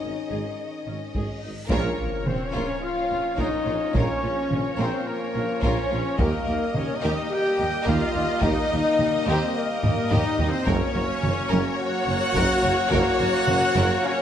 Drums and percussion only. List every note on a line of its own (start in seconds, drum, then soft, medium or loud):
1.15 taiko medium
1.70 taiko loud
2.26 taiko mid medium
3.38 taiko medium
3.95 taiko loud
4.51 taiko mid medium
5.62 taiko medium
6.19 taiko loud
6.74 taiko mid medium
7.87 taiko medium
8.43 taiko loud
8.99 taiko mid medium
9.83 taiko low-mid loud
10.11 taiko low-mid loud
10.39 taiko low loud
10.67 taiko loud
11.24 taiko mid medium
12.36 taiko loud
12.91 taiko loud
13.48 taiko mid medium